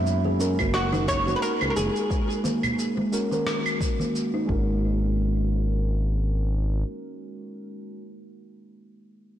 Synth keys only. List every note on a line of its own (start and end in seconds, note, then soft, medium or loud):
0.39 0.54 G#3 medium
0.39 0.54 C#4 medium
0.39 0.55 F#4 medium
0.39 0.55 A#4 loud
0.57 3.08 G#3 medium
0.57 3.09 C#4 medium
0.57 3.09 F#4 medium
0.57 3.10 A#4 medium
3.12 3.27 G#3 medium
3.12 3.27 C#4 medium
3.12 3.27 F#4 medium
3.12 3.28 A#4 medium
3.30 4.44 G#3 medium
3.30 4.46 C#4 medium
3.30 4.48 F#4 medium
3.30 4.50 A#4 medium
4.46 7.99 G#3 medium
4.46 8.01 C#4 medium
4.50 8.03 F#4 medium
4.50 8.05 A#4 medium